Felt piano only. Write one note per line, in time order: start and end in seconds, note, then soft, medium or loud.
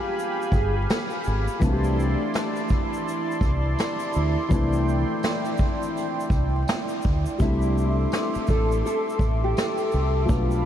0.00 1.57 F3 medium
0.00 1.57 G#3 medium
0.00 1.58 B3 medium
0.00 1.59 D4 medium
0.00 1.60 G4 medium
1.60 4.46 E3 medium
1.60 4.47 A3 medium
1.60 4.47 C4 medium
1.64 4.48 D4 medium
1.64 1.72 F#4 medium
1.72 4.52 G4 medium
4.49 7.35 E3 medium
4.49 7.36 A3 medium
4.49 7.36 C4 medium
4.53 7.37 D4 medium
4.53 7.38 E4 medium
7.38 10.24 G3 medium
7.38 10.25 A3 medium
7.38 10.26 C4 medium
7.43 10.27 D4 medium
7.43 10.27 E4 medium
10.25 10.65 F3 medium
10.25 10.65 A3 medium
10.25 10.65 B3 medium
10.30 10.65 D4 medium
10.30 10.65 F4 medium